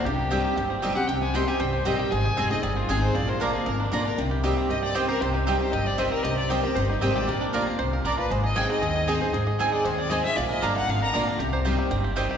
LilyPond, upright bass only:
\new Staff \with { instrumentName = "Upright bass" } { \clef bass \time 4/4 \key c \minor \tempo 4 = 233 c,2 g,,2 | c,2 c,4 bes,,4 | aes,,4 f,,4 g,,4 aes,,4 | bes,,2 aes,,4 bes,,4 |
c,2 g,,2 | c,2 g,,2 | c,2 g,,4 aes,,4 | bes,,2 c,4 bes,,4 |
aes,,2 ees,2 | aes,,2 ees,2 | bes,,4 g,,4 aes,,4 bes,,4 | c,2 g,,2 | }